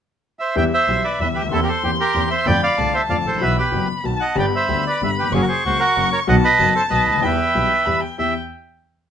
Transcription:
0.39 bandoneon C5 E5
0.55 grand piano E2 E3 G3 B3 G4, double bass E2, violin E5, bandoneon E5 G5
0.74 bandoneon C5 E5
0.88 double bass B1, grand piano B1 B2 E3 G3 B3 G4
1.04 bandoneon B4 D5
1.20 double bass E2, grand piano E2 E3 G3 B3 G4, bandoneon B4 E5
1.34 double bass D2, bandoneon G4 B4
1.42 grand piano C#2 D2
1.49 grand piano D#2 E2 E3 A#3 C4 G4, double bass E2, bandoneon A4, violin C6
1.54 bandoneon E4
1.63 bandoneon G4 A#4
1.68 bandoneon A4 C5
1.83 grand piano E2 E3 A#3 C4 G4, double bass E2, bandoneon G4 C5
2.00 bandoneon G4 A#4
2.14 grand piano E2 E3 A#3 C4 G4, double bass E2
2.30 bandoneon C5 E5
2.46 grand piano F2 D3 F3 A3 C4 F4, double bass F2, bandoneon D5 G5, violin B5
2.63 bandoneon D5 F5
2.78 double bass C2, grand piano C2 C3 D3 A3 C4 F4, violin A5
2.94 bandoneon C5 E5
3.09 grand piano F2 D3 F3 A3 C4 F4, double bass F2, bandoneon D5 F5
3.25 grand piano G#1, double bass A1, bandoneon A4 C5
3.33 grand piano A1 A#1
3.40 double bass B1, grand piano B1 B2 E3 F#3 B3 F#4, bandoneon B4 E5, violin B5
3.57 bandoneon G4 B4
3.72 grand piano F#1 F#2 E3 F#3 B3 F#4, double bass F#1
4.04 grand piano B1 B2 D#3 F#3 B3 F#4, double bass B1, violin A5
4.20 bandoneon D#5 F#5
4.36 grand piano G1 G2 D3 G3 B3 G4, double bass G1, bandoneon D5 G5, violin B5
4.55 bandoneon C5 E5
4.68 grand piano D2 D3 G3 B3 G4, double bass D2
4.87 bandoneon B4 D5
5.02 grand piano G1 G2 D3 G3 B3 G4, double bass G1, bandoneon B4 E5
5.18 bandoneon G4 B4
5.23 grand piano D#2 E2
5.30 double bass F#1, grand piano F2 F#2 C#3 F#3 A#3, violin C#6
5.34 bandoneon C#4 G#4, grand piano F#4
5.41 bandoneon F#4 A#4
5.48 bandoneon G#4 C5
5.65 double bass C#2, grand piano C#2 C#3 F#3 A#3 F#4, bandoneon F#4 C5
5.79 bandoneon F#4 A#4
5.96 double bass F#1, grand piano F#2 C#3 F#3 A#3 F#4
6.12 bandoneon A#4 C#5
6.27 grand piano B1 B2 D#3 F#3 B3 F#4, double bass B1, bandoneon D#5 F#5, violin A5
6.44 bandoneon B4 D#5
6.59 grand piano F#1 F#2 D#3 F#3 B3 F#4, double bass F#1
6.75 bandoneon A4 C5
6.90 grand piano B1 B2 D#3 F#3 B3 F#4, double bass B1, bandoneon B4 D#5
7.07 grand piano C#2, double bass D2
7.14 grand piano D2
7.18 grand piano D#2 E2 E3 G3
7.22 double bass E2, grand piano B3 G4, bandoneon B4 E5, violin G5
7.55 double bass B1, grand piano B1 B2 E3 G3 B3 G4
7.85 grand piano E2 E3 G3 B3 G4, double bass E2, violin B5
8.01 violin G5
8.18 grand piano E2 B3 E4 G4, double bass E2, bandoneon E5, violin G5

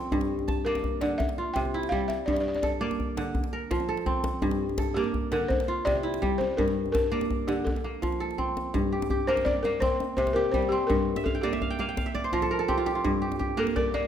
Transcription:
Already playing: kora F3 C4 A4 A#4
0.12 kora G2, djembe bass
0.21 djembe slap
0.39 djembe tone
0.48 kora A5, djembe slap, djembe bass
0.58 djembe slap
0.65 kora A#3 D5, balafon A#4
0.75 djembe slap, djembe tone
0.84 djembe slap, djembe bass
1.01 kora D3, balafon D5, djembe slap
1.11 djembe slap
1.18 balafon E5, djembe tone, djembe bass
1.29 djembe slap
1.38 kora F4
1.54 kora C3, balafon G5, djembe slap, djembe bass
1.65 djembe slap, djembe tone
1.74 kora E4
1.83 djembe slap
1.89 kora G3, balafon F5, djembe slap, djembe bass
2.01 djembe slap
2.08 balafon E5, djembe slap
2.26 kora G2, balafon D5, djembe bass
2.33 balafon D5, djembe slap
2.40 balafon D5
2.48 balafon D5
2.55 balafon D5, djembe tone
2.62 kora A4, balafon D5, djembe slap, djembe bass
2.72 djembe slap
2.81 kora A#3 D5
2.91 djembe slap, djembe tone
3.00 djembe slap, djembe bass
3.17 kora D3, djembe slap
3.26 djembe slap
3.35 djembe tone, djembe bass
3.44 djembe slap
3.53 kora A#4
3.71 kora F3, djembe slap, djembe bass
3.80 djembe slap, djembe tone
3.89 kora A4
3.97 djembe slap
4.06 kora C4, djembe slap, djembe bass
4.15 djembe slap
4.24 djembe slap, djembe tone
4.42 kora G2, djembe bass
4.51 djembe slap
4.69 djembe tone
4.78 kora A4, djembe slap, djembe bass
4.87 djembe slap
4.94 kora A#3 D5, balafon G4
5.04 djembe tone
5.14 djembe slap, djembe bass
5.32 kora D3, balafon A#4, djembe slap
5.41 djembe slap
5.48 balafon C5, djembe tone, djembe bass
5.60 djembe slap
5.68 kora F4
5.85 kora C3, balafon D5, djembe slap, djembe bass
5.96 djembe slap, djembe tone
6.03 kora E4
6.14 djembe slap
6.22 kora G3, djembe slap, djembe bass
6.32 djembe slap
6.38 balafon C5, djembe tone
6.57 kora G2, balafon A#4, djembe bass
6.68 djembe slap
6.85 djembe tone
6.92 balafon A#4, kora A5, djembe slap, djembe bass
7.12 kora A#3 D5, djembe slap
7.21 djembe slap, djembe tone
7.30 djembe slap, djembe bass
7.40 djembe slap
7.47 kora D3, balafon G4, djembe slap
7.65 balafon A4, djembe tone, djembe bass
7.76 djembe slap
7.84 kora A#3
7.94 djembe slap
8.02 kora F3, djembe slap, djembe bass
8.12 djembe tone
8.20 kora A4
8.31 djembe slap
8.38 kora C4, djembe bass
8.57 djembe slap, djembe tone
8.66 djembe slap
8.74 kora G2, djembe slap, djembe tone, djembe bass
8.84 djembe slap
8.92 kora G4
9.02 djembe slap, djembe tone
9.10 kora G4, djembe bass
9.27 kora A#3 A#4, balafon C5
9.37 djembe slap, djembe tone
9.45 balafon D5, kora D5, djembe bass
9.63 kora A#3, balafon A#4, djembe tone
9.74 djembe slap
9.80 kora C4, balafon C5, djembe slap, djembe bass
10.00 djembe tone
10.09 djembe slap
10.17 kora C3, balafon C5, djembe bass
10.27 djembe slap, djembe tone
10.33 kora G4, balafon A#4
10.45 djembe slap
10.52 kora G3, balafon C5, djembe bass
10.62 djembe tone
10.69 kora C4, balafon G4
10.81 djembe slap
10.87 kora G2, balafon A#4, djembe slap, djembe tone, djembe bass
10.99 djembe slap
11.16 kora E5, djembe slap, djembe tone
11.24 balafon A4, kora F5, djembe bass
11.35 kora G5
11.41 kora A#3 D5, balafon G4
11.53 kora E5, djembe slap, djembe tone
11.62 kora F5, djembe bass
11.70 kora G5
11.79 kora A#3 F5, djembe tone
11.89 kora G5
11.97 kora F5, djembe slap, djembe bass
12.06 kora E5
12.15 kora D5, djembe tone
12.24 kora C5
12.33 kora F3 A#4, djembe bass
12.42 kora A4, djembe slap, djembe tone
12.51 kora A#4
12.59 kora A4
12.68 kora C4 G4, djembe bass
12.78 kora F4, djembe tone
12.86 kora G4, djembe slap
12.95 kora F4, djembe slap
13.04 kora G2, djembe slap, djembe tone, djembe bass
13.14 djembe slap
13.22 kora G4
13.32 djembe slap, djembe tone
13.39 kora G4, djembe bass
13.57 kora A#3 A#4, balafon A4
13.67 djembe slap, djembe tone
13.76 balafon A#4, kora D5, djembe bass
13.94 kora A#3, balafon D5, djembe tone
14.03 djembe slap

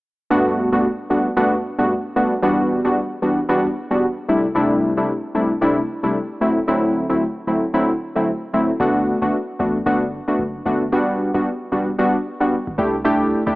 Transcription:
0.30 synth keys G2 A3 B3 D4 F#4
0.72 synth keys G2 A3 B3 D4 F#4
1.10 synth keys G2 A3 B3 D4 F#4
1.36 synth keys G2 A3 B3 D4 F#4
1.78 synth keys G2 A3 B3 D4 F#4
2.16 synth keys G2 A3 B3 D4 F#4
2.42 synth keys E2 G3 B3 D4 F#4
2.84 synth keys E2 G3 B3 D4 F#4
3.22 synth keys E2 G3 B3 D4 F#4
3.49 synth keys E2 G3 B3 D4 F#4
3.91 synth keys E2 G3 B3 D4 F#4
4.28 synth keys C3 G3 A3 D4 E4
4.55 synth keys C3 G3 A3 D4 E4
4.97 synth keys C3 G3 A3 D4 E4
5.35 synth keys C3 G3 A3 D4 E4
5.61 synth keys C3 G3 A3 D4 E4
6.03 synth keys C3 G3 A3 D4 E4
6.41 synth keys D2 F#3 A3 C4 E4
6.67 synth keys D2 F#3 A3 C4 E4
7.09 synth keys D2 F#3 A3 C4 E4
7.47 synth keys D2 F#3 A3 C4 E4
7.74 synth keys D2 F#3 A3 C4 E4
8.15 synth keys D2 F#3 A3 C4 E4
8.53 synth keys D2 F#3 A3 C4 E4
8.80 808-style bass G1, synth keys A3 B3 D4 F#4
9.22 808-style bass F#1, synth keys A3 B3 D4 F#4
9.59 808-style bass A1, synth keys A3 B3 D4 F#4
9.86 808-style bass G1, synth keys A3 B3 D4 F#4
10.28 synth keys A3 B3 D4 F#4
10.39 808-style bass F#1
10.66 808-style bass G1, synth keys A3 B3 D4 F#4
10.92 808-style bass E1, synth keys G3 B3 D4 F#4
11.34 808-style bass D1, synth keys G3 B3 D4 F#4
11.72 808-style bass E1, synth keys G3 B3 D4 F#4
11.98 synth keys G3 B3 D4 F#4
12.40 synth keys G3 B3 D4 F#4
12.67 808-style bass G1
12.78 808-style bass C2, synth keys A3 D4 E4 G4
13.04 synth keys A3 D4 E4 G4
13.46 808-style bass C2, synth keys A3 D4 E4 G4

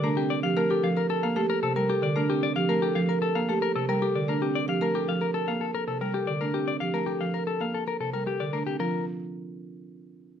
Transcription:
0.04 marimba A3 D4, clean electric guitar A#4
0.17 marimba C4, clean electric guitar G4
0.30 clean electric guitar D5
0.43 marimba F3 G4, clean electric guitar F5
0.56 marimba A3 A#4, clean electric guitar A#4
0.70 clean electric guitar G4, marimba A4
0.83 marimba F3, clean electric guitar F5
0.96 marimba A#4, clean electric guitar A#4
1.10 marimba A4, clean electric guitar A4
1.23 marimba A#3, clean electric guitar F5
1.36 marimba A3 G4, clean electric guitar A4
1.50 marimba A4, clean electric guitar A#4
1.63 marimba C3, clean electric guitar A4
1.76 marimba G3 A#4, clean electric guitar A#4
1.89 clean electric guitar G4, marimba A4
2.02 marimba D3, clean electric guitar D5
2.16 marimba A3 D4, clean electric guitar A#4
2.30 marimba C4, clean electric guitar G4
2.43 clean electric guitar D5
2.56 marimba F3 G4, clean electric guitar F5
2.69 marimba A3 A#4, clean electric guitar A#4
2.82 clean electric guitar G4, marimba A4
2.95 marimba F3, clean electric guitar F5
3.09 clean electric guitar A#4, marimba A#4
3.22 clean electric guitar A4, marimba A4
3.35 marimba A#3, clean electric guitar F5
3.49 marimba A3 G4, clean electric guitar A4
3.62 marimba A4, clean electric guitar A#4
3.76 marimba C3, clean electric guitar A4
3.89 marimba G3 A#4, clean electric guitar A#4
4.02 clean electric guitar G4, marimba A4
4.15 marimba D3, clean electric guitar D5
4.28 marimba A3 D4, clean electric guitar A#4
4.42 marimba C4, clean electric guitar G4
4.55 clean electric guitar D5
4.68 marimba F3 G4, clean electric guitar F5
4.81 marimba A3 A#4, clean electric guitar A#4
4.95 clean electric guitar G4, marimba A4
5.08 marimba F3, clean electric guitar F5
5.21 marimba A#4, clean electric guitar A#4
5.34 clean electric guitar A4, marimba A4
5.48 marimba A#3, clean electric guitar F5
5.61 clean electric guitar A4
5.74 marimba A4, clean electric guitar A#4
5.88 marimba C3, clean electric guitar A4
6.01 marimba G3 A#4, clean electric guitar A#4
6.14 clean electric guitar G4, marimba A4
6.27 marimba D3, clean electric guitar D5
6.41 marimba A3 D4, clean electric guitar A#4
6.54 marimba C4, clean electric guitar G4
6.68 clean electric guitar D5
6.80 marimba F3 G4, clean electric guitar F5
6.94 marimba A3 A#4, clean electric guitar A#4
7.06 clean electric guitar G4, marimba A4
7.21 marimba F3, clean electric guitar F5
7.34 clean electric guitar A#4, marimba A#4
7.47 clean electric guitar A4, marimba A4
7.60 marimba A#3, clean electric guitar F5
7.74 clean electric guitar A4
7.87 marimba A4, clean electric guitar A#4
8.00 marimba C3, clean electric guitar A4
8.13 marimba G3 A#4, clean electric guitar A#4
8.27 clean electric guitar G4, marimba A4
8.40 marimba D3, clean electric guitar D5
8.53 marimba A3 D4, clean electric guitar A#4
8.67 marimba C4, clean electric guitar G4
8.80 marimba F3 F4, clean electric guitar A#4

